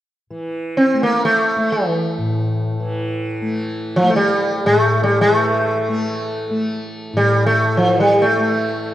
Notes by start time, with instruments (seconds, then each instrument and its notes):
0.30 tanpura E3
0.77 sitar C4
0.94 tanpura A3
1.03 sitar A#3
1.25 sitar A3
1.56 tanpura A3
1.72 sitar E3
2.18 tanpura A2
2.80 tanpura E3
3.42 tanpura A3
3.96 sitar F3
4.03 tanpura A3
4.10 sitar A3
4.16 sitar G3
4.65 tanpura A2, sitar G#3
4.81 sitar A3
5.03 sitar G3
5.21 sitar G#3
5.27 tanpura E3
5.36 sitar A3
5.89 tanpura A3
6.51 tanpura A3
7.13 tanpura A2, sitar G3
7.46 sitar A3
7.75 tanpura E3, sitar F3
8.00 sitar G3
8.22 sitar A3
8.37 tanpura A3